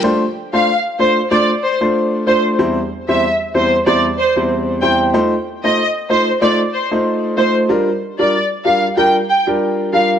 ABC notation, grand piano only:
X:1
M:4/4
L:1/16
Q:"Swing 16ths" 1/4=94
K:Dphr
V:1 name="Grand piano"
[A,DFc] z2 [A,DFc] z2 [A,DFc] z [A,DFc] z2 [A,DFc]3 [A,DFc]2 | [=E,,G,C=Ec] z2 [E,,G,CEc] z2 [E,,G,CEc] z [E,,G,CEc] z2 [E,,G,CEc]3 [E,,G,CEc]2 | [A,EFc] z2 [A,EFc] z2 [A,EFc] z [A,EFc] z2 [A,EFc]3 [A,EFc]2 | [G,DFB] z2 [G,DFB] z2 [G,DFB] z [G,DFB] z2 [G,DFB]3 [G,DFB]2 |]